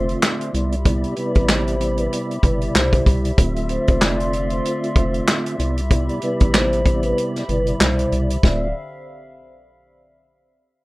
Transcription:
0.00 0.16 F1 medium
0.00 0.50 D3 medium
0.00 0.51 A3 medium
0.00 0.51 C4 medium
0.00 0.51 F4 medium
0.00 0.51 D5 medium
0.00 0.51 E5 medium
0.00 0.52 E5 loud
0.00 0.51 C6 medium
0.09 closed hi-hat soft
0.23 snare loud
0.23 clap loud
0.41 closed hi-hat medium
0.52 1.05 C2 medium
0.52 0.75 C3 medium
0.52 0.75 G3 medium
0.52 0.75 B3 medium
0.52 0.76 E4 medium
0.52 3.35 G4 medium
0.52 0.76 D5 loud
0.52 8.39 E5 medium
0.52 3.35 B5 medium
0.52 closed hi-hat medium
0.72 closed hi-hat medium
0.84 1.14 C3 medium
0.84 1.14 G3 medium
0.84 1.15 B3 medium
0.84 1.15 E4 medium
0.84 1.15 D5 loud
0.84 kick loud
0.84 closed hi-hat loud
1.04 closed hi-hat soft
1.16 1.76 C3 loud
1.16 1.76 G3 medium
1.16 1.77 B3 medium
1.16 1.77 E4 medium
1.16 1.45 B4 medium
1.16 1.77 D5 loud
1.16 closed hi-hat medium
1.35 2.08 A1 medium
1.35 kick medium
1.35 closed hi-hat medium
1.49 snare loud
1.49 clap medium
1.68 closed hi-hat soft
1.78 2.38 C3 medium
1.78 2.38 G3 medium
1.78 2.39 B3 medium
1.78 2.39 E4 medium
1.78 2.39 D5 loud
1.78 closed hi-hat medium
1.98 2.10 B4 medium
1.98 closed hi-hat medium
2.13 closed hi-hat medium
2.31 closed hi-hat soft
2.43 2.69 G1 medium
2.43 3.32 B2 medium
2.43 3.31 C3 medium
2.43 3.32 G3 medium
2.43 3.32 E4 medium
2.43 2.60 B4 medium
2.43 3.32 D5 loud
2.43 kick loud
2.43 closed hi-hat medium
2.61 closed hi-hat soft
2.75 3.00 C2 loud
2.75 3.03 C5 medium
2.75 snare loud
2.75 clap loud
2.93 kick loud
2.93 closed hi-hat medium
3.06 3.32 C2 medium
3.06 kick medium
3.06 closed hi-hat medium
3.25 closed hi-hat medium
3.37 3.78 D1 loud
3.37 5.56 D3 medium
3.37 5.56 A3 medium
3.37 5.56 C4 medium
3.37 5.57 F4 medium
3.37 5.58 F4 medium
3.37 5.58 D5 medium
3.37 5.57 E5 loud
3.37 5.58 C6 loud
3.37 kick loud
3.37 closed hi-hat loud
3.56 closed hi-hat soft
3.69 3.98 C5 medium
3.69 closed hi-hat medium
3.88 4.61 F1 medium
3.88 kick medium
3.88 closed hi-hat medium
4.02 4.49 D5 medium
4.02 snare loud
4.02 clap medium
4.20 closed hi-hat medium
4.33 closed hi-hat medium
4.50 4.64 C5 medium
4.50 closed hi-hat medium
4.65 closed hi-hat medium
4.84 closed hi-hat soft
4.95 5.21 F1 medium
4.95 5.12 C5 medium
4.95 kick loud
4.95 closed hi-hat medium
5.14 closed hi-hat soft
5.28 snare loud
5.28 clap loud
5.46 closed hi-hat medium
5.58 6.10 C2 medium
5.58 5.80 C3 loud
5.58 5.80 G3 medium
5.58 5.81 B3 medium
5.58 5.81 E4 loud
5.58 8.41 G4 medium
5.58 5.81 D5 loud
5.58 8.41 B5 loud
5.58 closed hi-hat medium
5.78 closed hi-hat medium
5.89 6.19 C3 medium
5.89 6.20 G3 medium
5.89 6.20 B3 medium
5.89 6.20 E4 medium
5.89 6.20 D5 loud
5.89 kick loud
5.89 closed hi-hat loud
6.09 closed hi-hat soft
6.22 6.81 C3 loud
6.22 6.81 G3 medium
6.22 6.82 B3 medium
6.22 6.82 E4 medium
6.22 6.51 B4 medium
6.22 6.82 D5 loud
6.22 closed hi-hat medium
6.40 7.13 A1 medium
6.40 kick loud
6.40 closed hi-hat medium
6.54 7.01 C5 medium
6.54 snare loud
6.54 clap medium
6.73 closed hi-hat soft
6.84 7.44 C3 loud
6.84 7.44 G3 medium
6.84 7.44 B3 medium
6.84 7.44 E4 medium
6.84 7.45 D5 loud
6.84 kick medium
6.84 closed hi-hat medium
7.03 7.16 B4 medium
7.03 closed hi-hat medium
7.18 closed hi-hat medium
7.36 snare soft
7.36 closed hi-hat medium
7.48 7.74 G1 loud
7.48 8.37 B2 medium
7.48 8.37 C3 medium
7.48 8.37 G3 medium
7.48 8.37 E4 loud
7.48 7.65 B4 medium
7.48 8.38 D5 loud
7.48 closed hi-hat medium
7.67 closed hi-hat medium
7.80 8.06 C2 loud
7.80 8.08 C5 medium
7.80 snare loud
7.80 clap loud
7.99 closed hi-hat medium
8.12 8.37 C2 loud
8.12 closed hi-hat medium
8.30 closed hi-hat medium
8.43 8.73 D1 loud
8.43 8.68 D3 medium
8.43 8.68 A3 medium
8.43 8.68 C4 medium
8.43 8.68 F4 medium
8.43 8.73 D5 medium
8.43 8.68 E5 loud
8.43 kick loud
8.43 snare medium

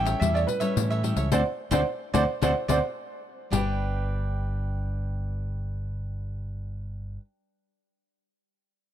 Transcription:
0.00 0.13 A1 medium
0.00 0.19 E3 medium
0.00 0.17 G3 medium
0.00 0.17 C#4 medium
0.00 0.18 E4 medium
0.00 0.18 G5 loud
0.05 0.20 A4 medium
0.05 0.20 C#5 medium
0.05 0.19 E5 medium
0.05 pandeiro medium
0.20 0.45 E2 loud
0.20 0.73 A2 medium
0.20 0.58 G3 medium
0.20 0.58 C#4 medium
0.20 0.58 E4 medium
0.20 0.34 G4 soft
0.20 0.34 A4 soft
0.20 0.34 C#5 medium
0.20 0.35 E5 loud
0.20 0.34 E5 medium
0.20 pandeiro medium
0.34 0.47 A4 medium
0.34 0.47 C#5 medium
0.34 0.39 D5 medium
0.34 0.47 E5 medium
0.34 pandeiro soft
0.47 0.99 B4 medium
0.47 muted cavaquinho stroke soft
0.47 pandeiro medium
0.60 0.99 G3 medium
0.60 0.99 C#4 medium
0.60 0.99 E4 medium
0.60 0.89 A4 medium
0.60 0.89 C#5 medium
0.60 0.88 E5 medium
0.60 pandeiro medium
0.76 1.12 A2 medium
0.76 1.29 E3 medium
0.76 pandeiro medium
0.90 1.02 A4 medium
0.90 1.03 C#5 medium
0.90 1.03 E5 medium
0.90 pandeiro soft
1.03 1.27 G3 medium
1.03 1.27 C#4 soft
1.03 1.27 E4 medium
1.03 1.17 G4 medium
1.03 1.17 A4 medium
1.03 1.16 C#5 medium
1.03 1.15 E5 medium
1.03 pandeiro medium
1.16 1.31 C#2 medium
1.16 1.31 A4 medium
1.16 1.30 C#5 medium
1.16 1.30 E5 medium
1.16 pandeiro medium
1.32 1.42 D2 medium
1.32 1.41 A3 medium
1.32 1.41 C4 medium
1.32 1.41 D4 loud
1.32 1.41 A4 loud
1.32 1.41 C5 medium
1.32 1.41 C5 loud
1.32 1.41 D5 medium
1.32 1.41 D5 loud
1.32 1.41 F#5 medium
1.32 pandeiro loud
1.71 1.82 D2 loud
1.71 1.81 A3 loud
1.71 1.81 C4 loud
1.71 1.81 D4 loud
1.71 1.81 A4 loud
1.71 1.81 C5 loud
1.71 1.82 C5 loud
1.71 1.80 D5 medium
1.71 1.81 D5 loud
1.71 1.82 F#5 medium
1.71 pandeiro loud
2.14 2.25 D2 loud
2.14 2.23 A3 loud
2.14 2.23 C4 loud
2.14 2.23 D4 medium
2.14 2.23 A4 medium
2.14 2.23 C5 loud
2.14 2.23 D5 loud
2.14 2.23 F#5 loud
2.14 pandeiro loud
2.42 2.52 D2 loud
2.42 2.51 A3 loud
2.42 2.51 C4 loud
2.42 2.51 D4 loud
2.42 2.51 A4 loud
2.42 2.51 C5 loud
2.42 2.51 D5 loud
2.42 2.51 D5 medium
2.42 2.51 F#5 loud
2.42 pandeiro loud
2.68 2.79 D2 loud
2.68 2.78 A3 loud
2.68 2.78 C4 loud
2.68 2.78 D4 loud
2.68 2.78 A4 medium
2.68 2.78 C5 medium
2.68 2.78 C5 loud
2.68 2.78 D5 loud
2.68 2.78 F#5 medium
2.68 pandeiro medium
3.50 7.17 G1 medium
3.50 7.19 G3 medium
3.50 7.20 D4 medium
3.50 7.21 D4 medium
3.50 7.21 G4 medium
3.50 7.22 B4 medium
3.50 7.17 G5 medium
3.50 pandeiro loud
3.56 7.24 B4 medium

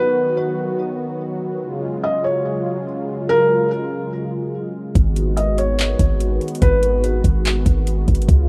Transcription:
0.00 1.59 D#3 medium
0.00 4.91 F#3 medium
0.00 1.59 B3 medium
0.00 1.59 F#4 medium
0.00 0.34 B4 loud
1.62 4.92 C#3 medium
1.62 8.49 G#3 medium
1.62 4.92 F4 medium
2.04 2.23 D#5 medium
2.24 2.83 C#5 medium
3.29 3.68 A#4 loud
4.95 5.96 G#1 loud
4.95 8.25 D#3 medium
4.95 8.49 B3 medium
4.95 8.25 F#4 medium
4.95 kick loud
4.95 closed hi-hat medium
5.16 closed hi-hat medium
5.37 5.57 D#5 medium
5.37 closed hi-hat medium
5.58 6.17 C#5 medium
5.58 closed hi-hat medium
5.79 clap loud
5.79 closed hi-hat medium
5.99 6.39 G#1 loud
5.99 kick medium
5.99 closed hi-hat medium
6.20 closed hi-hat medium
6.41 closed hi-hat soft
6.48 closed hi-hat medium
6.55 closed hi-hat medium
6.62 7.22 G#1 loud
6.62 7.01 B4 loud
6.62 kick loud
6.62 closed hi-hat medium
6.83 closed hi-hat medium
7.04 closed hi-hat medium
7.24 7.64 G#1 loud
7.24 kick loud
7.24 closed hi-hat medium
7.45 clap loud
7.45 closed hi-hat medium
7.66 8.06 G#1 loud
7.66 kick loud
7.66 closed hi-hat medium
7.87 closed hi-hat medium
8.08 8.28 G#1 loud
8.08 kick medium
8.08 closed hi-hat soft
8.15 closed hi-hat medium
8.22 closed hi-hat medium
8.29 8.49 C#2 loud
8.29 8.49 C#3 medium
8.29 8.49 F4 medium
8.29 kick loud
8.29 closed hi-hat medium

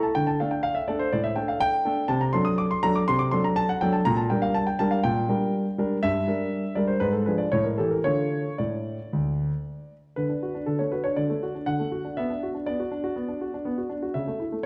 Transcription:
0.00 0.10 E4 soft
0.00 0.11 A4 medium
0.00 0.16 A5 medium
0.15 0.40 D3 medium
0.15 0.28 G5 medium
0.27 0.40 A5 medium
0.40 0.75 A3 soft
0.40 0.75 D4 soft
0.40 0.76 A4 soft
0.40 0.52 F5 medium
0.51 0.64 G5 medium
0.63 0.76 F5 medium
0.75 0.88 E5 medium
0.88 1.06 A3 medium
0.88 1.06 D4 soft
0.88 1.07 A4 medium
0.88 1.01 D5 medium
0.99 1.12 C5 medium
1.13 1.37 A2 medium
1.13 1.25 D5 medium
1.24 1.37 E5 medium
1.36 1.72 A3 soft
1.36 1.72 D4 soft
1.36 1.72 A4 soft
1.36 1.49 G5 medium
1.48 1.61 F5 medium
1.60 2.10 G5 loud
1.85 2.03 A3 medium
1.85 2.03 D4 soft
1.85 2.03 A4 medium
2.08 2.33 C3 medium
2.08 2.21 A5 medium
2.21 2.34 A#5 medium
2.33 2.69 F#3 soft
2.33 2.69 D4 soft
2.33 2.69 A4 soft
2.33 2.46 C6 medium
2.45 2.58 D#6 medium
2.58 2.71 D6 medium
2.71 2.83 C6 medium
2.83 3.01 F#3 soft
2.83 3.01 D4 soft
2.83 3.02 A4 medium
2.83 2.95 A#5 medium
2.96 3.08 D6 medium
3.08 3.32 C3 medium
3.08 3.20 C6 loud
3.19 3.32 D6 medium
3.31 3.68 F#3 soft
3.31 3.68 D4 soft
3.31 3.68 A4 medium
3.31 3.44 C6 medium
3.44 3.57 A#5 medium
3.56 3.69 A5 loud
3.69 3.82 F#5 medium
3.81 4.00 F#3 medium
3.81 4.00 D4 soft
3.81 4.00 A4 medium
3.81 3.94 G5 medium
3.93 4.06 A5 medium
4.05 4.30 A#2 medium
4.05 4.18 A#5 medium
4.17 4.30 A5 medium
4.30 4.66 G3 soft
4.30 4.66 D4 soft
4.30 4.66 A#4 medium
4.30 4.43 G5 medium
4.42 4.55 F5 medium
4.54 4.67 A5 medium
4.67 4.79 G5 medium
4.79 4.97 G3 soft
4.79 4.98 D4 medium
4.79 4.98 A#4 medium
4.79 4.92 A5 medium
4.91 5.04 F5 medium
5.03 5.28 A#2 medium
5.03 5.53 G5 medium
5.29 5.65 G3 soft
5.29 5.65 D4 soft
5.29 5.65 A#4 soft
5.78 5.96 G3 soft
5.78 5.97 D4 soft
5.78 5.97 A#4 medium
6.03 6.27 G2 medium
6.03 6.76 E5 medium
6.27 6.63 G3 soft
6.27 6.63 D4 soft
6.27 6.63 A#4 soft
6.75 6.94 G3 soft
6.75 6.94 D4 soft
6.75 6.95 A#4 soft
6.75 6.88 D5 medium
6.88 7.00 C5 medium
7.00 7.25 G#2 medium
7.00 7.13 B4 medium
7.13 7.26 A4 soft
7.26 7.45 F3 soft
7.26 7.45 D4 soft
7.26 7.45 G#4 soft
7.26 7.39 B4 medium
7.38 7.51 D5 medium
7.52 7.78 A2 medium
7.52 7.65 C#5 medium
7.64 7.78 A#4 soft
7.78 7.98 E3 soft
7.78 7.99 A3 soft
7.78 7.98 G4 soft
7.78 7.91 A4 medium
7.91 8.05 A#4 soft
8.04 8.43 D3 soft
8.04 8.48 A3 soft
8.04 8.48 F4 soft
8.04 8.58 C#5 medium
8.58 8.97 A2 soft
8.58 9.92 D5 medium
9.13 9.50 D2 soft
10.16 10.30 D3 soft
10.16 10.67 B4 medium
10.29 10.43 D4 soft
10.43 10.56 F#4 soft
10.55 10.68 D4 soft
10.66 10.79 D3 soft
10.66 10.79 A4 medium
10.79 10.93 A3 soft
10.79 10.92 C#5 soft
10.92 11.05 F#4 soft
10.92 11.04 B4 soft
11.04 11.18 D4 soft
11.04 11.17 C#5 medium
11.16 11.29 D3 soft
11.16 11.67 D5 medium
11.30 11.43 A3 soft
11.43 11.56 F#4 soft
11.55 11.68 D4 soft
11.66 11.79 D3 soft
11.66 12.17 F#5 medium
11.79 11.93 A3 soft
11.92 12.05 F#4 soft
12.05 12.17 D4 soft
12.17 12.30 B3 medium
12.17 12.47 E5 medium
12.30 12.43 D4 soft
12.43 12.56 F#4 soft
12.55 12.68 D4 soft
12.66 12.79 B3 soft
12.66 13.87 D5 medium
12.80 12.93 F#4 soft
12.91 13.05 D4 soft
13.04 13.17 F#4 soft
13.16 13.29 B3 soft
13.28 13.42 D4 soft
13.41 13.55 F#4 soft
13.54 13.67 D4 soft
13.65 13.78 B3 medium
13.78 13.92 F#4 soft
13.89 14.04 D4 soft
14.03 14.16 F#4 soft
14.14 14.28 C#3 soft
14.14 14.44 E5 medium
14.27 14.41 A3 soft
14.40 14.53 E4 soft
14.52 14.66 A3 soft

